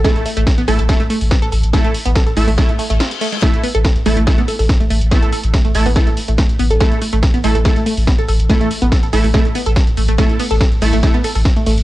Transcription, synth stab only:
X:1
M:4/4
L:1/8
Q:1/4=142
K:C
V:1 name="Synth stab"
[A,EA] z2 [A,EA] [A,EA] z3 | [A,EA] z2 [A,EA] [A,EA] z3 | [A,EA] z2 [A,EA] [A,EA] z3 | [A,EA] z2 [A,EA] [A,EA] z3 |
[A,EA] z2 [A,EA] [A,EA] z3 | [A,EA] z2 [A,EA] [A,EA] z3 | [A,EA] z2 [A,EA] [A,EA] z3 |]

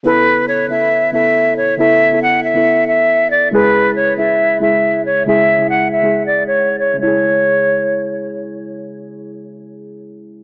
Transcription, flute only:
X:1
M:4/4
L:1/16
Q:1/4=138
K:C#m
V:1 name="Flute"
B4 c2 e4 e4 c2 | e4 f2 e4 e4 =d2 | B4 c2 e4 e4 c2 | e4 f2 e3 =d2 c3 c2 |
c12 z4 | z16 |]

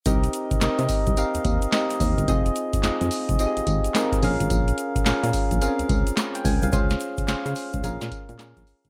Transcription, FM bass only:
X:1
M:4/4
L:1/16
Q:"Swing 16ths" 1/4=108
K:Bbdor
V:1 name="FM bass" clef=bass
C,,2 z C, C, C, z C,, z E,, E,, z3 E,, G,,, | F,,,2 z F,, F,, F,, z F,,, z A,,, A,,, z3 B,,, A,,, | B,,,2 z B,, B,, B,, z B,,, z D,, D,, z3 D,, C,, | D,,2 z D, D, D, z D,, B,,, B,, z B,, B,, B,,, z A,,, |]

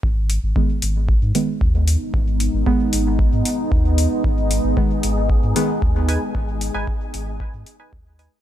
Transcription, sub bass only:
X:1
M:4/4
L:1/16
Q:1/4=114
K:G#m
V:1 name="Sub bass" clef=bass
G,,,3 G,,, z2 G,,,3 G,, z2 D,,3 z | G,,,3 G,,, z2 G,,,3 G,, z2 D,,3 z | G,,,3 G,,, z2 G,,,3 G,, z2 D,,3 z | G,,,3 G,,, z2 G,,,3 G,, z2 D,,3 z |]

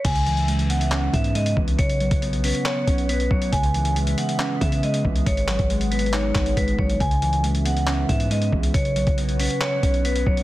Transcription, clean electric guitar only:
X:1
M:4/4
L:1/8
Q:1/4=138
K:C#m
V:1 name="Clean electric guitar" clef=bass
C, E, G, B, C B, G, E, | C, F, B, C c C B, F, | C, E, G, B, C B, G, E, | G,, F, G, B, D B, G, F, |
C, E, G, B, C B, G, E, | C, F, B, C c C B, F, |]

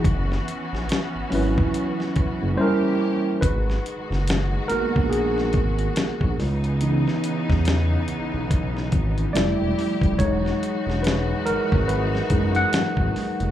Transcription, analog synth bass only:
X:1
M:4/4
L:1/16
Q:"Swing 16ths" 1/4=71
K:G#m
V:1 name="Analog synth bass" clef=bass
F,,,2 z A,,, z G,,, G,,,2 z2 F,,, F,,, z4 | G,,,2 z F,,,3 A,,, A,,,3 G,,,2 A,,, A,,, C,,2- | C,,2 z E,,3 B,,, B,,,3 G,,,2 =F,,, E,,, z D,,, | E,,,2 z E,,,3 G,,, G,,,3 F,,,2 G,,, G,,, z ^E,,, |]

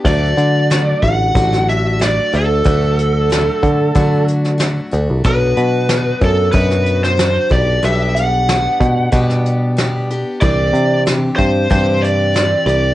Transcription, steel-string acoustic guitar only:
X:1
M:4/4
L:1/8
Q:1/4=93
K:Dmix
V:1 name="Steel-string acoustic guitar"
[D,F,A,DF]2 [F,A,DF]2 [D,F,A,DF]2 [F,A,DF] [A,DF] | [D,F,A,DF]2 [F,A,DF]2 [D,F,A,DF]2 [F,A,DF] [A,DF] | [B,,F,B,DF]2 [F,B,DF] [B,DF] [B,,F,B,DF]2 [F,DF] [B,DG] | [B,,G,B,DG]2 [G,B,DG]2 [B,,G,B,DG]2 [G,B,DG] [B,DG] |
[C,E,CDG]2 [E,CDG] [CDG] [C,E,CDG]2 [E,CDG] [CDG] |]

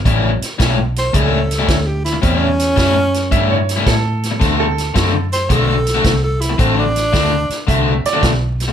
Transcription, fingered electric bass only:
X:1
M:4/4
L:1/8
Q:"Swing" 1/4=110
K:Amix
V:1 name="Fingered electric bass" clef=bass
A,,, z B,,,2 C,,2 D,,2 | E,,2 F,,2 G,,2 A,,2 | D,,2 F,,2 B,,,2 =C,,2 | A,,,2 D,, z =C,, z B,,,2 |]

